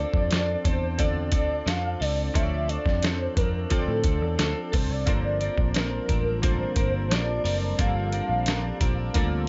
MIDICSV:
0, 0, Header, 1, 7, 480
1, 0, Start_track
1, 0, Key_signature, -2, "minor"
1, 0, Tempo, 680272
1, 1660, Time_signature, 4, 2, 24, 8
1, 6693, End_track
2, 0, Start_track
2, 0, Title_t, "Soft synth lead"
2, 0, Program_c, 0, 80
2, 0, Note_on_c, 0, 74, 104
2, 460, Note_on_c, 0, 72, 91
2, 470, Note_off_c, 0, 74, 0
2, 693, Note_off_c, 0, 72, 0
2, 698, Note_on_c, 0, 74, 103
2, 1176, Note_on_c, 0, 77, 105
2, 1187, Note_off_c, 0, 74, 0
2, 1416, Note_on_c, 0, 74, 100
2, 1427, Note_off_c, 0, 77, 0
2, 1656, Note_on_c, 0, 76, 106
2, 1666, Note_off_c, 0, 74, 0
2, 1897, Note_on_c, 0, 74, 97
2, 1908, Note_off_c, 0, 76, 0
2, 2140, Note_on_c, 0, 72, 98
2, 2150, Note_off_c, 0, 74, 0
2, 2375, Note_on_c, 0, 70, 86
2, 2386, Note_off_c, 0, 72, 0
2, 2619, Note_on_c, 0, 69, 98
2, 2630, Note_off_c, 0, 70, 0
2, 3344, Note_on_c, 0, 72, 85
2, 3355, Note_off_c, 0, 69, 0
2, 3461, Note_on_c, 0, 74, 92
2, 3472, Note_off_c, 0, 72, 0
2, 3580, Note_off_c, 0, 74, 0
2, 3583, Note_on_c, 0, 74, 106
2, 4058, Note_on_c, 0, 70, 87
2, 4069, Note_off_c, 0, 74, 0
2, 4538, Note_off_c, 0, 70, 0
2, 4542, Note_on_c, 0, 72, 98
2, 5020, Note_on_c, 0, 74, 108
2, 5031, Note_off_c, 0, 72, 0
2, 5499, Note_off_c, 0, 74, 0
2, 5505, Note_on_c, 0, 77, 103
2, 6433, Note_off_c, 0, 77, 0
2, 6693, End_track
3, 0, Start_track
3, 0, Title_t, "Synth keys"
3, 0, Program_c, 1, 88
3, 0, Control_c, 1, 64, 127
3, 0, Note_on_c, 1, 60, 67
3, 0, Note_on_c, 1, 65, 65
3, 0, Note_on_c, 1, 69, 62
3, 0, Note_on_c, 1, 74, 77
3, 330, Note_off_c, 1, 60, 0
3, 332, Note_off_c, 1, 65, 0
3, 335, Note_off_c, 1, 69, 0
3, 338, Note_off_c, 1, 74, 0
3, 689, Note_on_c, 1, 60, 63
3, 696, Note_on_c, 1, 65, 60
3, 702, Note_on_c, 1, 69, 59
3, 708, Note_on_c, 1, 74, 70
3, 1288, Note_off_c, 1, 60, 0
3, 1292, Note_off_c, 1, 65, 0
3, 1295, Note_off_c, 1, 69, 0
3, 1298, Note_off_c, 1, 74, 0
3, 1648, Note_on_c, 1, 60, 73
3, 1656, Note_on_c, 1, 65, 61
3, 1662, Note_on_c, 1, 69, 63
3, 1666, Note_on_c, 1, 73, 63
3, 1709, Note_off_c, 1, 73, 0
3, 1713, Note_on_c, 1, 74, 78
3, 2248, Note_off_c, 1, 60, 0
3, 2251, Note_off_c, 1, 65, 0
3, 2255, Note_off_c, 1, 69, 0
3, 2280, Note_off_c, 1, 74, 0
3, 2611, Note_on_c, 1, 60, 67
3, 2615, Note_on_c, 1, 65, 61
3, 2623, Note_on_c, 1, 69, 59
3, 2628, Note_on_c, 1, 72, 57
3, 2670, Note_off_c, 1, 72, 0
3, 2673, Note_on_c, 1, 74, 70
3, 3209, Note_off_c, 1, 60, 0
3, 3211, Note_off_c, 1, 65, 0
3, 3215, Note_off_c, 1, 69, 0
3, 3240, Note_off_c, 1, 74, 0
3, 3568, Note_on_c, 1, 58, 70
3, 3573, Note_on_c, 1, 65, 63
3, 3581, Note_on_c, 1, 69, 63
3, 3586, Note_on_c, 1, 72, 77
3, 3590, Control_c, 1, 64, 0
3, 3713, Control_c, 1, 64, 127
3, 4167, Note_off_c, 1, 58, 0
3, 4170, Note_off_c, 1, 65, 0
3, 4174, Note_off_c, 1, 69, 0
3, 4176, Note_off_c, 1, 72, 0
3, 4530, Note_on_c, 1, 58, 69
3, 4536, Note_on_c, 1, 65, 59
3, 4543, Note_on_c, 1, 69, 62
3, 4549, Note_on_c, 1, 72, 76
3, 5128, Note_off_c, 1, 58, 0
3, 5130, Note_off_c, 1, 65, 0
3, 5134, Note_off_c, 1, 69, 0
3, 5137, Note_off_c, 1, 72, 0
3, 5490, Note_on_c, 1, 58, 72
3, 5496, Note_on_c, 1, 65, 65
3, 5501, Note_on_c, 1, 69, 65
3, 5508, Note_on_c, 1, 72, 74
3, 6087, Note_off_c, 1, 58, 0
3, 6090, Note_off_c, 1, 65, 0
3, 6093, Note_off_c, 1, 69, 0
3, 6096, Note_off_c, 1, 72, 0
3, 6449, Note_on_c, 1, 58, 84
3, 6455, Note_on_c, 1, 65, 75
3, 6462, Note_on_c, 1, 69, 76
3, 6469, Note_on_c, 1, 74, 90
3, 6693, Note_off_c, 1, 58, 0
3, 6693, Note_off_c, 1, 65, 0
3, 6693, Note_off_c, 1, 69, 0
3, 6693, Note_off_c, 1, 74, 0
3, 6693, End_track
4, 0, Start_track
4, 0, Title_t, "Analog synth pad"
4, 0, Program_c, 2, 89
4, 3571, Note_on_c, 2, 55, 85
4, 3573, Note_on_c, 2, 72, 90
4, 3574, Note_on_c, 2, 58, 75
4, 3574, Note_on_c, 2, 65, 77
4, 3574, Note_on_c, 2, 81, 74
4, 5476, Note_off_c, 2, 72, 0
4, 5501, Note_on_c, 2, 74, 96
4, 6693, Note_off_c, 2, 55, 0
4, 6693, Note_off_c, 2, 58, 0
4, 6693, Note_off_c, 2, 65, 0
4, 6693, Note_off_c, 2, 74, 0
4, 6693, Note_off_c, 2, 81, 0
4, 6693, End_track
5, 0, Start_track
5, 0, Title_t, "Clean electric guitar"
5, 0, Program_c, 3, 27
5, 0, Note_on_c, 3, 60, 43
5, 0, Note_on_c, 3, 62, 52
5, 0, Note_on_c, 3, 69, 51
5, 213, Note_off_c, 3, 60, 0
5, 214, Note_on_c, 3, 53, 64
5, 218, Note_off_c, 3, 62, 0
5, 219, Note_off_c, 3, 69, 0
5, 221, Note_on_c, 3, 60, 61
5, 226, Note_on_c, 3, 62, 66
5, 231, Note_on_c, 3, 69, 64
5, 446, Note_off_c, 3, 69, 0
5, 453, Note_off_c, 3, 62, 0
5, 454, Note_on_c, 3, 69, 57
5, 458, Note_off_c, 3, 53, 0
5, 461, Note_off_c, 3, 60, 0
5, 462, Note_on_c, 3, 62, 52
5, 472, Note_on_c, 3, 60, 42
5, 693, Note_off_c, 3, 60, 0
5, 694, Note_off_c, 3, 62, 0
5, 694, Note_on_c, 3, 50, 77
5, 698, Note_off_c, 3, 69, 0
5, 701, Note_on_c, 3, 60, 75
5, 703, Note_on_c, 3, 62, 72
5, 706, Note_on_c, 3, 69, 78
5, 924, Note_off_c, 3, 69, 0
5, 932, Note_on_c, 3, 69, 54
5, 933, Note_off_c, 3, 62, 0
5, 937, Note_off_c, 3, 50, 0
5, 941, Note_off_c, 3, 60, 0
5, 941, Note_on_c, 3, 62, 52
5, 949, Note_on_c, 3, 60, 47
5, 1169, Note_off_c, 3, 60, 0
5, 1172, Note_on_c, 3, 53, 64
5, 1175, Note_off_c, 3, 62, 0
5, 1176, Note_off_c, 3, 69, 0
5, 1178, Note_on_c, 3, 60, 62
5, 1183, Note_on_c, 3, 62, 62
5, 1187, Note_on_c, 3, 69, 71
5, 1402, Note_off_c, 3, 69, 0
5, 1410, Note_on_c, 3, 69, 51
5, 1412, Note_off_c, 3, 62, 0
5, 1416, Note_off_c, 3, 53, 0
5, 1419, Note_off_c, 3, 60, 0
5, 1421, Note_on_c, 3, 62, 50
5, 1428, Note_on_c, 3, 60, 44
5, 1650, Note_off_c, 3, 60, 0
5, 1651, Note_on_c, 3, 50, 70
5, 1652, Note_off_c, 3, 62, 0
5, 1654, Note_on_c, 3, 53, 79
5, 1655, Note_off_c, 3, 69, 0
5, 1658, Note_on_c, 3, 60, 75
5, 1661, Note_on_c, 3, 62, 78
5, 1663, Note_on_c, 3, 69, 77
5, 1882, Note_off_c, 3, 69, 0
5, 1890, Note_on_c, 3, 69, 48
5, 1893, Note_off_c, 3, 62, 0
5, 1896, Note_off_c, 3, 50, 0
5, 1897, Note_off_c, 3, 53, 0
5, 1897, Note_off_c, 3, 60, 0
5, 1901, Note_on_c, 3, 62, 47
5, 1906, Note_on_c, 3, 60, 44
5, 2127, Note_off_c, 3, 60, 0
5, 2130, Note_on_c, 3, 53, 52
5, 2131, Note_off_c, 3, 62, 0
5, 2135, Note_off_c, 3, 69, 0
5, 2135, Note_on_c, 3, 60, 57
5, 2139, Note_on_c, 3, 62, 60
5, 2147, Note_on_c, 3, 69, 68
5, 2373, Note_off_c, 3, 62, 0
5, 2375, Note_off_c, 3, 53, 0
5, 2378, Note_off_c, 3, 60, 0
5, 2382, Note_on_c, 3, 62, 51
5, 2383, Note_off_c, 3, 69, 0
5, 2388, Note_on_c, 3, 60, 46
5, 2611, Note_off_c, 3, 60, 0
5, 2611, Note_off_c, 3, 62, 0
5, 2611, Note_on_c, 3, 50, 78
5, 2616, Note_on_c, 3, 53, 72
5, 2620, Note_on_c, 3, 60, 74
5, 2620, Note_on_c, 3, 62, 82
5, 2624, Note_on_c, 3, 69, 79
5, 2844, Note_off_c, 3, 69, 0
5, 2853, Note_on_c, 3, 69, 49
5, 2854, Note_off_c, 3, 62, 0
5, 2855, Note_off_c, 3, 50, 0
5, 2858, Note_off_c, 3, 53, 0
5, 2860, Note_off_c, 3, 60, 0
5, 2862, Note_on_c, 3, 62, 47
5, 2869, Note_on_c, 3, 60, 45
5, 3088, Note_off_c, 3, 60, 0
5, 3090, Note_on_c, 3, 53, 58
5, 3092, Note_off_c, 3, 62, 0
5, 3096, Note_off_c, 3, 69, 0
5, 3096, Note_on_c, 3, 60, 67
5, 3100, Note_on_c, 3, 62, 62
5, 3107, Note_on_c, 3, 69, 72
5, 3323, Note_off_c, 3, 69, 0
5, 3331, Note_off_c, 3, 62, 0
5, 3331, Note_on_c, 3, 69, 56
5, 3335, Note_off_c, 3, 53, 0
5, 3338, Note_off_c, 3, 60, 0
5, 3339, Note_on_c, 3, 62, 42
5, 3346, Note_on_c, 3, 60, 41
5, 3575, Note_off_c, 3, 60, 0
5, 3575, Note_off_c, 3, 69, 0
5, 3576, Note_on_c, 3, 43, 74
5, 3577, Note_off_c, 3, 62, 0
5, 3579, Note_on_c, 3, 50, 74
5, 3580, Note_on_c, 3, 53, 72
5, 3583, Note_on_c, 3, 60, 72
5, 3586, Note_on_c, 3, 62, 82
5, 3588, Note_on_c, 3, 70, 83
5, 3806, Note_off_c, 3, 70, 0
5, 3814, Note_off_c, 3, 62, 0
5, 3815, Note_on_c, 3, 70, 54
5, 3817, Note_off_c, 3, 60, 0
5, 3818, Note_off_c, 3, 43, 0
5, 3819, Note_off_c, 3, 50, 0
5, 3820, Note_off_c, 3, 53, 0
5, 3822, Note_on_c, 3, 62, 48
5, 3826, Note_on_c, 3, 60, 45
5, 3831, Note_on_c, 3, 53, 40
5, 4045, Note_off_c, 3, 53, 0
5, 4052, Note_off_c, 3, 60, 0
5, 4054, Note_on_c, 3, 53, 62
5, 4056, Note_off_c, 3, 62, 0
5, 4057, Note_off_c, 3, 70, 0
5, 4060, Note_on_c, 3, 60, 63
5, 4064, Note_on_c, 3, 62, 64
5, 4069, Note_on_c, 3, 70, 64
5, 4286, Note_off_c, 3, 70, 0
5, 4291, Note_off_c, 3, 62, 0
5, 4294, Note_on_c, 3, 70, 54
5, 4296, Note_off_c, 3, 53, 0
5, 4297, Note_off_c, 3, 60, 0
5, 4300, Note_on_c, 3, 62, 50
5, 4305, Note_on_c, 3, 60, 44
5, 4308, Note_on_c, 3, 53, 44
5, 4531, Note_off_c, 3, 53, 0
5, 4532, Note_off_c, 3, 60, 0
5, 4532, Note_on_c, 3, 43, 73
5, 4535, Note_off_c, 3, 62, 0
5, 4536, Note_off_c, 3, 70, 0
5, 4536, Note_on_c, 3, 50, 72
5, 4540, Note_on_c, 3, 53, 79
5, 4541, Note_on_c, 3, 60, 82
5, 4544, Note_on_c, 3, 62, 78
5, 4545, Note_on_c, 3, 70, 78
5, 4766, Note_off_c, 3, 70, 0
5, 4771, Note_off_c, 3, 62, 0
5, 4775, Note_off_c, 3, 43, 0
5, 4775, Note_on_c, 3, 70, 57
5, 4776, Note_off_c, 3, 60, 0
5, 4777, Note_off_c, 3, 50, 0
5, 4779, Note_off_c, 3, 53, 0
5, 4780, Note_on_c, 3, 62, 54
5, 4785, Note_on_c, 3, 60, 47
5, 4790, Note_on_c, 3, 53, 43
5, 5004, Note_off_c, 3, 53, 0
5, 5008, Note_off_c, 3, 60, 0
5, 5012, Note_on_c, 3, 53, 57
5, 5014, Note_off_c, 3, 62, 0
5, 5016, Note_on_c, 3, 60, 69
5, 5017, Note_off_c, 3, 70, 0
5, 5023, Note_on_c, 3, 62, 62
5, 5028, Note_on_c, 3, 70, 73
5, 5241, Note_off_c, 3, 70, 0
5, 5247, Note_off_c, 3, 62, 0
5, 5250, Note_on_c, 3, 70, 52
5, 5255, Note_off_c, 3, 53, 0
5, 5255, Note_off_c, 3, 60, 0
5, 5255, Note_on_c, 3, 62, 53
5, 5264, Note_on_c, 3, 60, 49
5, 5267, Note_on_c, 3, 53, 42
5, 5491, Note_off_c, 3, 53, 0
5, 5493, Note_off_c, 3, 60, 0
5, 5493, Note_off_c, 3, 62, 0
5, 5494, Note_off_c, 3, 70, 0
5, 5494, Note_on_c, 3, 43, 74
5, 5496, Note_on_c, 3, 50, 74
5, 5499, Note_on_c, 3, 53, 73
5, 5501, Note_on_c, 3, 60, 71
5, 5501, Note_on_c, 3, 62, 76
5, 5504, Note_on_c, 3, 70, 75
5, 5725, Note_off_c, 3, 70, 0
5, 5733, Note_off_c, 3, 62, 0
5, 5733, Note_on_c, 3, 70, 51
5, 5736, Note_off_c, 3, 43, 0
5, 5737, Note_off_c, 3, 50, 0
5, 5739, Note_off_c, 3, 53, 0
5, 5739, Note_off_c, 3, 60, 0
5, 5742, Note_on_c, 3, 62, 49
5, 5747, Note_on_c, 3, 60, 44
5, 5750, Note_on_c, 3, 53, 42
5, 5966, Note_off_c, 3, 53, 0
5, 5972, Note_off_c, 3, 60, 0
5, 5975, Note_off_c, 3, 70, 0
5, 5975, Note_on_c, 3, 53, 65
5, 5978, Note_off_c, 3, 62, 0
5, 5980, Note_on_c, 3, 60, 63
5, 5986, Note_on_c, 3, 62, 59
5, 5990, Note_on_c, 3, 70, 64
5, 6204, Note_off_c, 3, 70, 0
5, 6209, Note_off_c, 3, 62, 0
5, 6213, Note_on_c, 3, 70, 62
5, 6216, Note_off_c, 3, 53, 0
5, 6217, Note_off_c, 3, 60, 0
5, 6218, Note_on_c, 3, 62, 55
5, 6225, Note_on_c, 3, 60, 55
5, 6228, Note_on_c, 3, 53, 52
5, 6454, Note_off_c, 3, 53, 0
5, 6454, Note_off_c, 3, 60, 0
5, 6455, Note_off_c, 3, 70, 0
5, 6456, Note_on_c, 3, 43, 86
5, 6457, Note_off_c, 3, 62, 0
5, 6458, Note_on_c, 3, 50, 82
5, 6462, Note_on_c, 3, 53, 77
5, 6462, Note_on_c, 3, 60, 86
5, 6466, Note_on_c, 3, 62, 90
5, 6468, Note_on_c, 3, 70, 97
5, 6684, Note_off_c, 3, 70, 0
5, 6691, Note_off_c, 3, 62, 0
5, 6693, Note_off_c, 3, 43, 0
5, 6693, Note_off_c, 3, 50, 0
5, 6693, Note_off_c, 3, 53, 0
5, 6693, Note_off_c, 3, 60, 0
5, 6693, End_track
6, 0, Start_track
6, 0, Title_t, "Picked electric bass"
6, 0, Program_c, 4, 34
6, 96, Note_on_c, 4, 41, 76
6, 386, Note_off_c, 4, 41, 0
6, 459, Note_on_c, 4, 40, 92
6, 932, Note_off_c, 4, 40, 0
6, 932, Note_on_c, 4, 38, 92
6, 1127, Note_off_c, 4, 38, 0
6, 1175, Note_on_c, 4, 41, 89
6, 1369, Note_off_c, 4, 41, 0
6, 1418, Note_on_c, 4, 37, 80
6, 1611, Note_off_c, 4, 37, 0
6, 1659, Note_on_c, 4, 38, 99
6, 1947, Note_off_c, 4, 38, 0
6, 2014, Note_on_c, 4, 41, 90
6, 2304, Note_off_c, 4, 41, 0
6, 2377, Note_on_c, 4, 41, 89
6, 2570, Note_off_c, 4, 41, 0
6, 2738, Note_on_c, 4, 45, 85
6, 2834, Note_off_c, 4, 45, 0
6, 2851, Note_on_c, 4, 38, 88
6, 2951, Note_off_c, 4, 38, 0
6, 2975, Note_on_c, 4, 40, 90
6, 3073, Note_off_c, 4, 40, 0
6, 3094, Note_on_c, 4, 38, 82
6, 3192, Note_off_c, 4, 38, 0
6, 3341, Note_on_c, 4, 36, 81
6, 3437, Note_off_c, 4, 36, 0
6, 3456, Note_on_c, 4, 36, 79
6, 3553, Note_off_c, 4, 36, 0
6, 3578, Note_on_c, 4, 31, 98
6, 3866, Note_off_c, 4, 31, 0
6, 3932, Note_on_c, 4, 34, 82
6, 4223, Note_off_c, 4, 34, 0
6, 4295, Note_on_c, 4, 33, 96
6, 4681, Note_off_c, 4, 33, 0
6, 4772, Note_on_c, 4, 31, 86
6, 5014, Note_off_c, 4, 31, 0
6, 5014, Note_on_c, 4, 34, 91
6, 5208, Note_off_c, 4, 34, 0
6, 5256, Note_on_c, 4, 30, 84
6, 5449, Note_off_c, 4, 30, 0
6, 5496, Note_on_c, 4, 31, 99
6, 5785, Note_off_c, 4, 31, 0
6, 5852, Note_on_c, 4, 34, 81
6, 6142, Note_off_c, 4, 34, 0
6, 6214, Note_on_c, 4, 34, 93
6, 6407, Note_off_c, 4, 34, 0
6, 6456, Note_on_c, 4, 38, 93
6, 6693, Note_off_c, 4, 38, 0
6, 6693, End_track
7, 0, Start_track
7, 0, Title_t, "Drums"
7, 96, Note_on_c, 9, 36, 78
7, 166, Note_off_c, 9, 36, 0
7, 216, Note_on_c, 9, 42, 85
7, 229, Note_on_c, 9, 38, 100
7, 286, Note_off_c, 9, 42, 0
7, 300, Note_off_c, 9, 38, 0
7, 459, Note_on_c, 9, 36, 89
7, 459, Note_on_c, 9, 42, 79
7, 529, Note_off_c, 9, 36, 0
7, 529, Note_off_c, 9, 42, 0
7, 696, Note_on_c, 9, 42, 89
7, 701, Note_on_c, 9, 36, 81
7, 767, Note_off_c, 9, 42, 0
7, 772, Note_off_c, 9, 36, 0
7, 928, Note_on_c, 9, 42, 82
7, 933, Note_on_c, 9, 36, 82
7, 999, Note_off_c, 9, 42, 0
7, 1004, Note_off_c, 9, 36, 0
7, 1182, Note_on_c, 9, 42, 94
7, 1184, Note_on_c, 9, 38, 100
7, 1252, Note_off_c, 9, 42, 0
7, 1255, Note_off_c, 9, 38, 0
7, 1425, Note_on_c, 9, 46, 54
7, 1495, Note_off_c, 9, 46, 0
7, 1660, Note_on_c, 9, 36, 101
7, 1661, Note_on_c, 9, 42, 90
7, 1730, Note_off_c, 9, 36, 0
7, 1732, Note_off_c, 9, 42, 0
7, 1900, Note_on_c, 9, 42, 59
7, 1970, Note_off_c, 9, 42, 0
7, 2015, Note_on_c, 9, 36, 83
7, 2028, Note_on_c, 9, 38, 31
7, 2086, Note_off_c, 9, 36, 0
7, 2099, Note_off_c, 9, 38, 0
7, 2134, Note_on_c, 9, 42, 85
7, 2148, Note_on_c, 9, 38, 104
7, 2205, Note_off_c, 9, 42, 0
7, 2218, Note_off_c, 9, 38, 0
7, 2377, Note_on_c, 9, 36, 89
7, 2377, Note_on_c, 9, 42, 81
7, 2447, Note_off_c, 9, 42, 0
7, 2448, Note_off_c, 9, 36, 0
7, 2614, Note_on_c, 9, 42, 84
7, 2620, Note_on_c, 9, 36, 79
7, 2684, Note_off_c, 9, 42, 0
7, 2690, Note_off_c, 9, 36, 0
7, 2848, Note_on_c, 9, 42, 81
7, 2852, Note_on_c, 9, 36, 77
7, 2918, Note_off_c, 9, 42, 0
7, 2923, Note_off_c, 9, 36, 0
7, 3097, Note_on_c, 9, 42, 91
7, 3099, Note_on_c, 9, 38, 96
7, 3167, Note_off_c, 9, 42, 0
7, 3169, Note_off_c, 9, 38, 0
7, 3339, Note_on_c, 9, 46, 56
7, 3342, Note_on_c, 9, 36, 84
7, 3410, Note_off_c, 9, 46, 0
7, 3413, Note_off_c, 9, 36, 0
7, 3575, Note_on_c, 9, 42, 91
7, 3578, Note_on_c, 9, 36, 100
7, 3646, Note_off_c, 9, 42, 0
7, 3649, Note_off_c, 9, 36, 0
7, 3815, Note_on_c, 9, 42, 57
7, 3886, Note_off_c, 9, 42, 0
7, 3934, Note_on_c, 9, 36, 83
7, 4005, Note_off_c, 9, 36, 0
7, 4053, Note_on_c, 9, 42, 80
7, 4066, Note_on_c, 9, 38, 103
7, 4123, Note_off_c, 9, 42, 0
7, 4137, Note_off_c, 9, 38, 0
7, 4297, Note_on_c, 9, 42, 73
7, 4298, Note_on_c, 9, 36, 93
7, 4367, Note_off_c, 9, 42, 0
7, 4368, Note_off_c, 9, 36, 0
7, 4537, Note_on_c, 9, 42, 80
7, 4541, Note_on_c, 9, 36, 84
7, 4608, Note_off_c, 9, 42, 0
7, 4611, Note_off_c, 9, 36, 0
7, 4769, Note_on_c, 9, 42, 83
7, 4773, Note_on_c, 9, 36, 77
7, 4839, Note_off_c, 9, 42, 0
7, 4843, Note_off_c, 9, 36, 0
7, 5019, Note_on_c, 9, 42, 92
7, 5022, Note_on_c, 9, 38, 99
7, 5090, Note_off_c, 9, 42, 0
7, 5092, Note_off_c, 9, 38, 0
7, 5260, Note_on_c, 9, 46, 54
7, 5331, Note_off_c, 9, 46, 0
7, 5495, Note_on_c, 9, 42, 99
7, 5497, Note_on_c, 9, 36, 101
7, 5566, Note_off_c, 9, 42, 0
7, 5568, Note_off_c, 9, 36, 0
7, 5733, Note_on_c, 9, 42, 59
7, 5803, Note_off_c, 9, 42, 0
7, 5970, Note_on_c, 9, 42, 88
7, 5983, Note_on_c, 9, 38, 103
7, 6040, Note_off_c, 9, 42, 0
7, 6054, Note_off_c, 9, 38, 0
7, 6214, Note_on_c, 9, 42, 74
7, 6216, Note_on_c, 9, 36, 92
7, 6285, Note_off_c, 9, 42, 0
7, 6286, Note_off_c, 9, 36, 0
7, 6451, Note_on_c, 9, 42, 85
7, 6458, Note_on_c, 9, 36, 89
7, 6522, Note_off_c, 9, 42, 0
7, 6528, Note_off_c, 9, 36, 0
7, 6693, End_track
0, 0, End_of_file